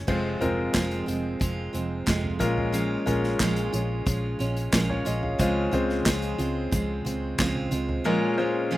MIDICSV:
0, 0, Header, 1, 5, 480
1, 0, Start_track
1, 0, Tempo, 664452
1, 59, Time_signature, 4, 2, 24, 8
1, 6339, End_track
2, 0, Start_track
2, 0, Title_t, "Grand piano"
2, 0, Program_c, 0, 0
2, 0, Control_c, 0, 64, 127
2, 0, Note_on_c, 0, 51, 50
2, 0, Note_on_c, 0, 61, 56
2, 58, Note_on_c, 0, 56, 71
2, 58, Note_on_c, 0, 60, 68
2, 59, Note_on_c, 0, 65, 71
2, 59, Note_on_c, 0, 72, 81
2, 70, Control_c, 0, 64, 0
2, 74, Note_off_c, 0, 61, 0
2, 76, Note_off_c, 0, 51, 0
2, 180, Control_c, 0, 64, 127
2, 236, Note_off_c, 0, 56, 0
2, 236, Note_off_c, 0, 60, 0
2, 236, Note_off_c, 0, 65, 0
2, 236, Note_off_c, 0, 72, 0
2, 297, Note_on_c, 0, 56, 76
2, 297, Note_on_c, 0, 60, 70
2, 297, Note_on_c, 0, 70, 81
2, 299, Note_on_c, 0, 65, 72
2, 1007, Note_off_c, 0, 56, 0
2, 1007, Note_off_c, 0, 60, 0
2, 1007, Note_off_c, 0, 70, 0
2, 1008, Note_off_c, 0, 65, 0
2, 1731, Note_on_c, 0, 61, 79
2, 1733, Note_on_c, 0, 46, 68
2, 1733, Note_on_c, 0, 56, 81
2, 1733, Note_on_c, 0, 65, 75
2, 1733, Note_on_c, 0, 70, 89
2, 1749, Control_c, 0, 64, 0
2, 1873, Control_c, 0, 64, 127
2, 2119, Note_off_c, 0, 61, 0
2, 2120, Note_off_c, 0, 56, 0
2, 2120, Note_off_c, 0, 65, 0
2, 2120, Note_off_c, 0, 70, 0
2, 2213, Note_on_c, 0, 56, 76
2, 2214, Note_on_c, 0, 65, 69
2, 2216, Note_on_c, 0, 61, 75
2, 2216, Note_on_c, 0, 70, 81
2, 2427, Note_off_c, 0, 46, 0
2, 2924, Note_off_c, 0, 56, 0
2, 2925, Note_off_c, 0, 65, 0
2, 2926, Note_off_c, 0, 61, 0
2, 2926, Note_off_c, 0, 70, 0
2, 3415, Note_on_c, 0, 70, 53
2, 3418, Note_on_c, 0, 61, 47
2, 3531, Note_off_c, 0, 70, 0
2, 3532, Note_off_c, 0, 61, 0
2, 3539, Note_on_c, 0, 73, 68
2, 3544, Note_on_c, 0, 65, 58
2, 3653, Note_off_c, 0, 73, 0
2, 3655, Note_off_c, 0, 65, 0
2, 3658, Note_on_c, 0, 75, 61
2, 3772, Note_off_c, 0, 75, 0
2, 3780, Note_on_c, 0, 77, 59
2, 3785, Note_on_c, 0, 68, 49
2, 3901, Note_on_c, 0, 49, 72
2, 3901, Note_on_c, 0, 61, 72
2, 3902, Note_on_c, 0, 56, 78
2, 3903, Note_on_c, 0, 65, 79
2, 3903, Note_on_c, 0, 72, 83
2, 3906, Control_c, 0, 64, 0
2, 4007, Note_off_c, 0, 77, 0
2, 4010, Note_off_c, 0, 68, 0
2, 4040, Control_c, 0, 64, 127
2, 4077, Note_off_c, 0, 56, 0
2, 4077, Note_off_c, 0, 61, 0
2, 4078, Note_off_c, 0, 65, 0
2, 4078, Note_off_c, 0, 72, 0
2, 4141, Note_on_c, 0, 56, 80
2, 4143, Note_on_c, 0, 65, 68
2, 4143, Note_on_c, 0, 72, 85
2, 4144, Note_on_c, 0, 60, 74
2, 4591, Note_off_c, 0, 49, 0
2, 4848, Note_off_c, 0, 56, 0
2, 4849, Note_off_c, 0, 65, 0
2, 4849, Note_off_c, 0, 72, 0
2, 4850, Note_off_c, 0, 60, 0
2, 5817, Note_on_c, 0, 46, 71
2, 5817, Note_on_c, 0, 65, 79
2, 5818, Note_on_c, 0, 70, 94
2, 5819, Note_on_c, 0, 56, 89
2, 5819, Note_on_c, 0, 61, 73
2, 5827, Control_c, 0, 64, 0
2, 5946, Control_c, 0, 64, 127
2, 5995, Note_off_c, 0, 61, 0
2, 5995, Note_off_c, 0, 65, 0
2, 5995, Note_off_c, 0, 70, 0
2, 5996, Note_off_c, 0, 56, 0
2, 6050, Note_on_c, 0, 56, 75
2, 6051, Note_on_c, 0, 61, 74
2, 6051, Note_on_c, 0, 65, 74
2, 6053, Note_on_c, 0, 72, 88
2, 6339, Note_off_c, 0, 46, 0
2, 6339, Note_off_c, 0, 56, 0
2, 6339, Note_off_c, 0, 61, 0
2, 6339, Note_off_c, 0, 65, 0
2, 6339, Note_off_c, 0, 72, 0
2, 6339, End_track
3, 0, Start_track
3, 0, Title_t, "Steel-string acoustic guitar"
3, 0, Program_c, 1, 25
3, 51, Note_on_c, 1, 41, 64
3, 55, Note_on_c, 1, 48, 76
3, 57, Note_on_c, 1, 53, 74
3, 60, Note_on_c, 1, 56, 74
3, 63, Note_on_c, 1, 60, 72
3, 64, Note_on_c, 1, 65, 77
3, 284, Note_off_c, 1, 65, 0
3, 290, Note_off_c, 1, 60, 0
3, 293, Note_on_c, 1, 65, 46
3, 295, Note_off_c, 1, 41, 0
3, 297, Note_off_c, 1, 48, 0
3, 297, Note_off_c, 1, 56, 0
3, 298, Note_off_c, 1, 53, 0
3, 299, Note_on_c, 1, 60, 43
3, 305, Note_on_c, 1, 56, 45
3, 312, Note_on_c, 1, 53, 37
3, 528, Note_off_c, 1, 53, 0
3, 529, Note_off_c, 1, 56, 0
3, 529, Note_on_c, 1, 41, 76
3, 531, Note_off_c, 1, 60, 0
3, 534, Note_off_c, 1, 65, 0
3, 534, Note_on_c, 1, 48, 72
3, 536, Note_on_c, 1, 53, 79
3, 538, Note_on_c, 1, 56, 78
3, 540, Note_on_c, 1, 60, 75
3, 543, Note_on_c, 1, 65, 86
3, 758, Note_off_c, 1, 65, 0
3, 765, Note_off_c, 1, 60, 0
3, 767, Note_on_c, 1, 65, 58
3, 773, Note_off_c, 1, 56, 0
3, 774, Note_off_c, 1, 41, 0
3, 774, Note_on_c, 1, 60, 52
3, 777, Note_off_c, 1, 48, 0
3, 778, Note_off_c, 1, 53, 0
3, 781, Note_on_c, 1, 56, 50
3, 785, Note_on_c, 1, 53, 39
3, 1000, Note_off_c, 1, 53, 0
3, 1008, Note_off_c, 1, 56, 0
3, 1008, Note_on_c, 1, 53, 59
3, 1013, Note_off_c, 1, 65, 0
3, 1015, Note_off_c, 1, 60, 0
3, 1017, Note_on_c, 1, 56, 62
3, 1024, Note_on_c, 1, 60, 65
3, 1029, Note_on_c, 1, 65, 64
3, 1240, Note_off_c, 1, 65, 0
3, 1246, Note_off_c, 1, 60, 0
3, 1249, Note_on_c, 1, 65, 51
3, 1252, Note_off_c, 1, 56, 0
3, 1254, Note_off_c, 1, 53, 0
3, 1254, Note_on_c, 1, 60, 49
3, 1260, Note_on_c, 1, 56, 42
3, 1265, Note_on_c, 1, 53, 42
3, 1486, Note_off_c, 1, 53, 0
3, 1487, Note_off_c, 1, 56, 0
3, 1488, Note_on_c, 1, 41, 75
3, 1491, Note_off_c, 1, 60, 0
3, 1491, Note_on_c, 1, 48, 73
3, 1494, Note_off_c, 1, 65, 0
3, 1495, Note_on_c, 1, 53, 74
3, 1496, Note_on_c, 1, 56, 89
3, 1500, Note_on_c, 1, 60, 82
3, 1501, Note_on_c, 1, 65, 76
3, 1718, Note_off_c, 1, 65, 0
3, 1727, Note_on_c, 1, 65, 58
3, 1734, Note_off_c, 1, 41, 0
3, 1735, Note_off_c, 1, 48, 0
3, 1735, Note_off_c, 1, 60, 0
3, 1737, Note_off_c, 1, 53, 0
3, 1737, Note_off_c, 1, 56, 0
3, 1738, Note_on_c, 1, 61, 50
3, 1746, Note_on_c, 1, 56, 44
3, 1968, Note_off_c, 1, 56, 0
3, 1968, Note_on_c, 1, 46, 68
3, 1970, Note_off_c, 1, 61, 0
3, 1973, Note_off_c, 1, 65, 0
3, 1973, Note_on_c, 1, 53, 79
3, 1976, Note_on_c, 1, 56, 72
3, 1979, Note_on_c, 1, 61, 86
3, 1981, Note_on_c, 1, 65, 82
3, 2200, Note_off_c, 1, 65, 0
3, 2209, Note_on_c, 1, 65, 49
3, 2210, Note_off_c, 1, 61, 0
3, 2214, Note_off_c, 1, 46, 0
3, 2216, Note_off_c, 1, 53, 0
3, 2218, Note_off_c, 1, 56, 0
3, 2219, Note_on_c, 1, 61, 46
3, 2228, Note_on_c, 1, 56, 44
3, 2449, Note_off_c, 1, 56, 0
3, 2451, Note_on_c, 1, 46, 75
3, 2454, Note_off_c, 1, 61, 0
3, 2454, Note_off_c, 1, 65, 0
3, 2456, Note_on_c, 1, 53, 77
3, 2458, Note_on_c, 1, 56, 87
3, 2462, Note_on_c, 1, 61, 90
3, 2465, Note_on_c, 1, 65, 85
3, 2683, Note_off_c, 1, 65, 0
3, 2692, Note_on_c, 1, 65, 60
3, 2694, Note_off_c, 1, 61, 0
3, 2695, Note_off_c, 1, 46, 0
3, 2697, Note_off_c, 1, 53, 0
3, 2698, Note_off_c, 1, 56, 0
3, 2703, Note_on_c, 1, 61, 51
3, 2711, Note_on_c, 1, 56, 43
3, 2929, Note_off_c, 1, 56, 0
3, 2931, Note_on_c, 1, 53, 53
3, 2935, Note_off_c, 1, 65, 0
3, 2936, Note_off_c, 1, 61, 0
3, 2937, Note_on_c, 1, 56, 63
3, 2944, Note_on_c, 1, 61, 57
3, 2950, Note_on_c, 1, 65, 57
3, 3162, Note_off_c, 1, 65, 0
3, 3170, Note_on_c, 1, 65, 54
3, 3173, Note_off_c, 1, 61, 0
3, 3175, Note_off_c, 1, 53, 0
3, 3178, Note_off_c, 1, 56, 0
3, 3182, Note_on_c, 1, 61, 50
3, 3188, Note_on_c, 1, 56, 43
3, 3409, Note_off_c, 1, 56, 0
3, 3409, Note_on_c, 1, 46, 70
3, 3412, Note_off_c, 1, 61, 0
3, 3414, Note_off_c, 1, 65, 0
3, 3415, Note_on_c, 1, 53, 87
3, 3417, Note_on_c, 1, 56, 90
3, 3420, Note_on_c, 1, 61, 76
3, 3424, Note_on_c, 1, 65, 83
3, 3640, Note_off_c, 1, 65, 0
3, 3648, Note_on_c, 1, 65, 59
3, 3650, Note_off_c, 1, 61, 0
3, 3654, Note_off_c, 1, 46, 0
3, 3657, Note_off_c, 1, 53, 0
3, 3658, Note_off_c, 1, 56, 0
3, 3658, Note_on_c, 1, 61, 50
3, 3667, Note_on_c, 1, 56, 42
3, 3887, Note_off_c, 1, 56, 0
3, 3890, Note_on_c, 1, 49, 63
3, 3893, Note_off_c, 1, 65, 0
3, 3893, Note_on_c, 1, 53, 83
3, 3896, Note_on_c, 1, 56, 70
3, 3898, Note_off_c, 1, 61, 0
3, 3901, Note_on_c, 1, 60, 84
3, 3902, Note_on_c, 1, 65, 82
3, 4119, Note_off_c, 1, 65, 0
3, 4127, Note_on_c, 1, 65, 52
3, 4130, Note_off_c, 1, 60, 0
3, 4134, Note_off_c, 1, 49, 0
3, 4136, Note_off_c, 1, 53, 0
3, 4137, Note_off_c, 1, 56, 0
3, 4139, Note_on_c, 1, 60, 43
3, 4147, Note_on_c, 1, 56, 45
3, 4369, Note_off_c, 1, 56, 0
3, 4369, Note_on_c, 1, 49, 81
3, 4371, Note_off_c, 1, 60, 0
3, 4373, Note_off_c, 1, 65, 0
3, 4374, Note_on_c, 1, 53, 80
3, 4377, Note_on_c, 1, 56, 87
3, 4380, Note_on_c, 1, 60, 91
3, 4381, Note_on_c, 1, 65, 90
3, 4603, Note_off_c, 1, 65, 0
3, 4612, Note_off_c, 1, 60, 0
3, 4612, Note_on_c, 1, 65, 66
3, 4613, Note_off_c, 1, 49, 0
3, 4616, Note_off_c, 1, 53, 0
3, 4618, Note_off_c, 1, 56, 0
3, 4621, Note_on_c, 1, 60, 52
3, 4631, Note_on_c, 1, 56, 47
3, 4850, Note_off_c, 1, 56, 0
3, 4850, Note_on_c, 1, 53, 62
3, 4855, Note_off_c, 1, 65, 0
3, 4857, Note_off_c, 1, 60, 0
3, 4858, Note_on_c, 1, 56, 60
3, 4865, Note_on_c, 1, 60, 72
3, 4871, Note_on_c, 1, 65, 59
3, 5083, Note_off_c, 1, 65, 0
3, 5091, Note_on_c, 1, 65, 55
3, 5093, Note_off_c, 1, 60, 0
3, 5094, Note_off_c, 1, 53, 0
3, 5098, Note_off_c, 1, 56, 0
3, 5102, Note_on_c, 1, 60, 44
3, 5110, Note_on_c, 1, 56, 45
3, 5329, Note_off_c, 1, 56, 0
3, 5332, Note_on_c, 1, 49, 82
3, 5333, Note_off_c, 1, 60, 0
3, 5335, Note_off_c, 1, 65, 0
3, 5336, Note_on_c, 1, 53, 78
3, 5338, Note_on_c, 1, 56, 95
3, 5342, Note_on_c, 1, 60, 99
3, 5345, Note_on_c, 1, 65, 83
3, 5560, Note_off_c, 1, 65, 0
3, 5569, Note_on_c, 1, 65, 57
3, 5570, Note_off_c, 1, 60, 0
3, 5575, Note_off_c, 1, 49, 0
3, 5577, Note_off_c, 1, 53, 0
3, 5578, Note_off_c, 1, 56, 0
3, 5579, Note_on_c, 1, 60, 54
3, 5589, Note_on_c, 1, 56, 51
3, 5808, Note_off_c, 1, 56, 0
3, 5811, Note_on_c, 1, 46, 79
3, 5813, Note_off_c, 1, 65, 0
3, 5815, Note_on_c, 1, 53, 87
3, 5817, Note_on_c, 1, 56, 84
3, 5818, Note_off_c, 1, 60, 0
3, 5820, Note_on_c, 1, 61, 91
3, 5824, Note_on_c, 1, 65, 84
3, 6042, Note_off_c, 1, 65, 0
3, 6051, Note_on_c, 1, 65, 55
3, 6054, Note_off_c, 1, 46, 0
3, 6054, Note_off_c, 1, 61, 0
3, 6056, Note_off_c, 1, 53, 0
3, 6057, Note_off_c, 1, 56, 0
3, 6062, Note_on_c, 1, 61, 47
3, 6070, Note_on_c, 1, 56, 43
3, 6288, Note_off_c, 1, 56, 0
3, 6290, Note_on_c, 1, 46, 78
3, 6292, Note_off_c, 1, 61, 0
3, 6293, Note_on_c, 1, 53, 89
3, 6294, Note_off_c, 1, 65, 0
3, 6297, Note_on_c, 1, 56, 85
3, 6300, Note_on_c, 1, 61, 96
3, 6304, Note_on_c, 1, 65, 89
3, 6339, Note_off_c, 1, 46, 0
3, 6339, Note_off_c, 1, 53, 0
3, 6339, Note_off_c, 1, 56, 0
3, 6339, Note_off_c, 1, 61, 0
3, 6339, Note_off_c, 1, 65, 0
3, 6339, End_track
4, 0, Start_track
4, 0, Title_t, "Fingered electric bass"
4, 0, Program_c, 2, 33
4, 57, Note_on_c, 2, 29, 92
4, 255, Note_off_c, 2, 29, 0
4, 298, Note_on_c, 2, 29, 83
4, 496, Note_off_c, 2, 29, 0
4, 537, Note_on_c, 2, 29, 90
4, 735, Note_off_c, 2, 29, 0
4, 777, Note_on_c, 2, 29, 86
4, 975, Note_off_c, 2, 29, 0
4, 1016, Note_on_c, 2, 29, 81
4, 1214, Note_off_c, 2, 29, 0
4, 1258, Note_on_c, 2, 29, 82
4, 1455, Note_off_c, 2, 29, 0
4, 1497, Note_on_c, 2, 29, 92
4, 1695, Note_off_c, 2, 29, 0
4, 1738, Note_on_c, 2, 34, 87
4, 2132, Note_off_c, 2, 34, 0
4, 2217, Note_on_c, 2, 34, 92
4, 2414, Note_off_c, 2, 34, 0
4, 2456, Note_on_c, 2, 34, 91
4, 2654, Note_off_c, 2, 34, 0
4, 2699, Note_on_c, 2, 34, 97
4, 2896, Note_off_c, 2, 34, 0
4, 2937, Note_on_c, 2, 34, 83
4, 3134, Note_off_c, 2, 34, 0
4, 3180, Note_on_c, 2, 34, 85
4, 3376, Note_off_c, 2, 34, 0
4, 3416, Note_on_c, 2, 34, 99
4, 3614, Note_off_c, 2, 34, 0
4, 3663, Note_on_c, 2, 34, 83
4, 3858, Note_off_c, 2, 34, 0
4, 3897, Note_on_c, 2, 37, 95
4, 4094, Note_off_c, 2, 37, 0
4, 4138, Note_on_c, 2, 37, 93
4, 4335, Note_off_c, 2, 37, 0
4, 4376, Note_on_c, 2, 37, 105
4, 4574, Note_off_c, 2, 37, 0
4, 4614, Note_on_c, 2, 37, 92
4, 4812, Note_off_c, 2, 37, 0
4, 4856, Note_on_c, 2, 37, 89
4, 5054, Note_off_c, 2, 37, 0
4, 5096, Note_on_c, 2, 37, 80
4, 5293, Note_off_c, 2, 37, 0
4, 5337, Note_on_c, 2, 37, 104
4, 5534, Note_off_c, 2, 37, 0
4, 5574, Note_on_c, 2, 37, 101
4, 5772, Note_off_c, 2, 37, 0
4, 6339, End_track
5, 0, Start_track
5, 0, Title_t, "Drums"
5, 57, Note_on_c, 9, 49, 71
5, 58, Note_on_c, 9, 36, 97
5, 129, Note_off_c, 9, 49, 0
5, 130, Note_off_c, 9, 36, 0
5, 300, Note_on_c, 9, 42, 60
5, 300, Note_on_c, 9, 43, 58
5, 372, Note_off_c, 9, 42, 0
5, 373, Note_off_c, 9, 43, 0
5, 537, Note_on_c, 9, 38, 93
5, 538, Note_on_c, 9, 36, 87
5, 538, Note_on_c, 9, 39, 81
5, 540, Note_on_c, 9, 42, 73
5, 609, Note_off_c, 9, 38, 0
5, 610, Note_off_c, 9, 36, 0
5, 611, Note_off_c, 9, 39, 0
5, 613, Note_off_c, 9, 42, 0
5, 658, Note_on_c, 9, 42, 51
5, 730, Note_off_c, 9, 42, 0
5, 782, Note_on_c, 9, 42, 71
5, 855, Note_off_c, 9, 42, 0
5, 1018, Note_on_c, 9, 36, 114
5, 1020, Note_on_c, 9, 42, 79
5, 1091, Note_off_c, 9, 36, 0
5, 1092, Note_off_c, 9, 42, 0
5, 1260, Note_on_c, 9, 42, 64
5, 1332, Note_off_c, 9, 42, 0
5, 1497, Note_on_c, 9, 38, 86
5, 1497, Note_on_c, 9, 42, 62
5, 1498, Note_on_c, 9, 36, 90
5, 1499, Note_on_c, 9, 39, 67
5, 1569, Note_off_c, 9, 38, 0
5, 1569, Note_off_c, 9, 42, 0
5, 1570, Note_off_c, 9, 36, 0
5, 1571, Note_off_c, 9, 39, 0
5, 1619, Note_on_c, 9, 43, 59
5, 1691, Note_off_c, 9, 43, 0
5, 1736, Note_on_c, 9, 42, 69
5, 1738, Note_on_c, 9, 36, 81
5, 1808, Note_off_c, 9, 42, 0
5, 1810, Note_off_c, 9, 36, 0
5, 1861, Note_on_c, 9, 43, 59
5, 1933, Note_off_c, 9, 43, 0
5, 1977, Note_on_c, 9, 42, 68
5, 2050, Note_off_c, 9, 42, 0
5, 2217, Note_on_c, 9, 42, 58
5, 2217, Note_on_c, 9, 43, 62
5, 2289, Note_off_c, 9, 42, 0
5, 2290, Note_off_c, 9, 43, 0
5, 2338, Note_on_c, 9, 38, 37
5, 2411, Note_off_c, 9, 38, 0
5, 2455, Note_on_c, 9, 38, 96
5, 2457, Note_on_c, 9, 36, 89
5, 2457, Note_on_c, 9, 39, 73
5, 2459, Note_on_c, 9, 42, 77
5, 2527, Note_off_c, 9, 38, 0
5, 2529, Note_off_c, 9, 36, 0
5, 2529, Note_off_c, 9, 39, 0
5, 2531, Note_off_c, 9, 42, 0
5, 2574, Note_on_c, 9, 42, 49
5, 2646, Note_off_c, 9, 42, 0
5, 2699, Note_on_c, 9, 42, 75
5, 2771, Note_off_c, 9, 42, 0
5, 2937, Note_on_c, 9, 36, 113
5, 2938, Note_on_c, 9, 42, 81
5, 3009, Note_off_c, 9, 36, 0
5, 3010, Note_off_c, 9, 42, 0
5, 3180, Note_on_c, 9, 42, 59
5, 3252, Note_off_c, 9, 42, 0
5, 3298, Note_on_c, 9, 42, 46
5, 3370, Note_off_c, 9, 42, 0
5, 3416, Note_on_c, 9, 38, 99
5, 3416, Note_on_c, 9, 42, 72
5, 3417, Note_on_c, 9, 36, 89
5, 3418, Note_on_c, 9, 39, 80
5, 3488, Note_off_c, 9, 38, 0
5, 3488, Note_off_c, 9, 42, 0
5, 3489, Note_off_c, 9, 36, 0
5, 3490, Note_off_c, 9, 39, 0
5, 3537, Note_on_c, 9, 43, 60
5, 3609, Note_off_c, 9, 43, 0
5, 3655, Note_on_c, 9, 42, 66
5, 3727, Note_off_c, 9, 42, 0
5, 3778, Note_on_c, 9, 43, 60
5, 3850, Note_off_c, 9, 43, 0
5, 3897, Note_on_c, 9, 36, 104
5, 3898, Note_on_c, 9, 42, 85
5, 3970, Note_off_c, 9, 36, 0
5, 3970, Note_off_c, 9, 42, 0
5, 4136, Note_on_c, 9, 42, 64
5, 4136, Note_on_c, 9, 43, 58
5, 4208, Note_off_c, 9, 42, 0
5, 4208, Note_off_c, 9, 43, 0
5, 4259, Note_on_c, 9, 38, 31
5, 4331, Note_off_c, 9, 38, 0
5, 4376, Note_on_c, 9, 38, 95
5, 4377, Note_on_c, 9, 36, 88
5, 4378, Note_on_c, 9, 39, 77
5, 4380, Note_on_c, 9, 42, 87
5, 4449, Note_off_c, 9, 36, 0
5, 4449, Note_off_c, 9, 38, 0
5, 4450, Note_off_c, 9, 39, 0
5, 4452, Note_off_c, 9, 42, 0
5, 4494, Note_on_c, 9, 42, 49
5, 4566, Note_off_c, 9, 42, 0
5, 4617, Note_on_c, 9, 42, 68
5, 4690, Note_off_c, 9, 42, 0
5, 4857, Note_on_c, 9, 42, 88
5, 4858, Note_on_c, 9, 36, 114
5, 4929, Note_off_c, 9, 42, 0
5, 4930, Note_off_c, 9, 36, 0
5, 5100, Note_on_c, 9, 43, 53
5, 5102, Note_on_c, 9, 42, 70
5, 5173, Note_off_c, 9, 43, 0
5, 5175, Note_off_c, 9, 42, 0
5, 5338, Note_on_c, 9, 36, 95
5, 5338, Note_on_c, 9, 38, 93
5, 5338, Note_on_c, 9, 42, 67
5, 5340, Note_on_c, 9, 39, 78
5, 5410, Note_off_c, 9, 36, 0
5, 5410, Note_off_c, 9, 42, 0
5, 5411, Note_off_c, 9, 38, 0
5, 5412, Note_off_c, 9, 39, 0
5, 5456, Note_on_c, 9, 43, 64
5, 5528, Note_off_c, 9, 43, 0
5, 5574, Note_on_c, 9, 42, 75
5, 5647, Note_off_c, 9, 42, 0
5, 5699, Note_on_c, 9, 43, 70
5, 5771, Note_off_c, 9, 43, 0
5, 6339, End_track
0, 0, End_of_file